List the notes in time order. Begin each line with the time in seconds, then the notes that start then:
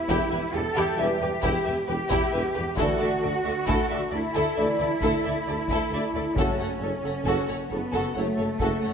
Already playing: E4
0.08 E1 E2 E4 G4, taiko
0.31 E2 G4 B4 E5
0.53 E1 E2 G4 A4 B4
0.74 E2 E4 G4
0.95 E1 E2 E3 G3 G4 B4 E5
1.20 E2 G4 B4
1.42 E1 E2 E4 G4, taiko
1.65 E2 G4 B4 E5
1.87 E1 E2 G4 B4
2.09 E2 E4 G4, taiko
2.31 E1 E2 G4 B4 E5
2.54 E2 G4 B4
2.76 D2 E3 A3 E4 F#4 A4 D5, taiko
2.99 D2 A4 D5 E5
3.22 D2 A4 D5
3.45 D2 A4 D5 E5
3.66 D2 E4 A4, taiko
3.90 D2 A4 D5 E5
4.11 D2 E4 A4 D5
4.34 D2 E4 A4
4.56 D2 E3 A3 A4 D5 E5
4.79 D2 A4 D5
5.01 D2 E4 A4, taiko
5.25 D2 A4 D5 E5
5.47 D2 A4 D5
5.68 D2 E4 A4, taiko
5.91 D2 A4 D5 E5
6.14 D2 A4 D5
6.36 F#1 F#3 A3 C#4 F#4 A4 C#5, taiko
6.59 F#1 A4 C#5 F#5
6.81 F#1 A4 C#5
7.03 F#1 A4 C#5 F#5
7.25 F#1 F#4 A4, taiko
7.48 F#1 A4 C#5 F#5
7.70 F#1 B3 A4 C#5
7.92 F#1 F#4 A4
8.15 F#1 F#3 A3 A4 C#5 F#5
8.37 F#1 A4 C#5
8.58 F#1 F#4 A4, taiko
8.81 F#1 A4 C#5 F#5